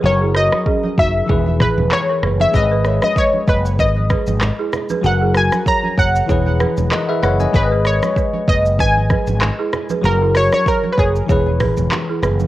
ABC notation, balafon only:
X:1
M:4/4
L:1/16
Q:"Swing 16ths" 1/4=96
K:G#m
V:1 name="Balafon"
z [EG] [FA] z [CG] z [DF] z [EG] z [GB] z2 [Ac] [GB] z | z [GB] [Ac] z [Bd] z [Bd] z [Bd] z [GB] z2 [EG] z [GB] | z [EG] [FA] z [Ac] z [Ac] z [Gc] z [GB] z2 [EG] [GB] z | z [GB] [Ac] z [Bd] z [Bd] z [Bd] z [GB] z2 [EG] z [GB] |
z [EG] [FA] z [Ac] z [Ac] z [Gc] z [GB] z2 [EG] [GB] z |]